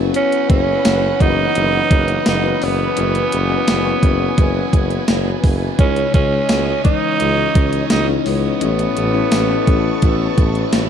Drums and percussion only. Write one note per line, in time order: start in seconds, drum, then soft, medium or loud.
0.14 closed hi-hat medium
0.32 closed hi-hat medium
0.50 kick medium
0.50 closed hi-hat medium
0.85 snare loud
0.85 closed hi-hat medium
0.85 tambourine medium
1.20 kick medium
1.20 closed hi-hat medium
1.55 closed hi-hat medium
1.91 kick loud
1.91 closed hi-hat medium
2.08 closed hi-hat medium
2.26 snare loud
2.26 closed hi-hat loud
2.26 tambourine medium
2.62 open hi-hat medium
2.97 closed hi-hat medium
3.15 closed hi-hat medium
3.32 closed hi-hat medium
3.68 snare loud
3.68 closed hi-hat medium
3.68 tambourine medium
4.03 kick medium
4.03 closed hi-hat medium
4.38 kick medium
4.38 closed hi-hat medium
4.73 kick medium
4.73 closed hi-hat medium
4.90 closed hi-hat soft
5.08 snare loud
5.08 closed hi-hat medium
5.08 tambourine medium
5.44 kick medium
5.44 open hi-hat medium
5.79 kick loud
5.79 closed hi-hat medium
5.96 closed hi-hat medium
6.14 kick loud
6.14 closed hi-hat medium
6.49 snare loud
6.49 closed hi-hat medium
6.49 tambourine medium
6.85 kick medium
6.85 closed hi-hat medium
7.20 closed hi-hat medium
7.55 kick loud
7.55 closed hi-hat medium
7.73 closed hi-hat medium
7.90 snare loud
7.90 closed hi-hat loud
7.90 tambourine medium
8.26 open hi-hat medium
8.61 closed hi-hat medium
8.79 closed hi-hat medium
8.97 closed hi-hat medium
9.32 snare loud
9.32 closed hi-hat medium
9.32 tambourine medium
9.67 kick medium
9.67 closed hi-hat medium
10.02 kick medium
10.02 closed hi-hat medium
10.38 kick medium
10.38 closed hi-hat medium
10.55 closed hi-hat medium
10.73 snare loud
10.73 closed hi-hat loud
10.73 tambourine medium